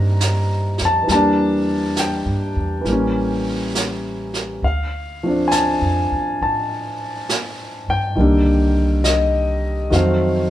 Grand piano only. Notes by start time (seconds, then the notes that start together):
Already playing: D#3 G3 A#3 C4 D4 D#4 A#5
0.85 A5
1.03 E3
1.07 G3 A#3
1.12 D4 A5
1.99 G5
2.81 E3 G3
2.88 A#3
2.92 C#4
4.64 F5
5.23 F3 A3 C4
5.28 D4
5.48 G#5
5.52 A5
6.42 A5
7.90 G5
8.16 D#3 G3 A#3
8.21 D3
9.04 D#5
9.90 D#3 F#3 A3 F5
9.95 C4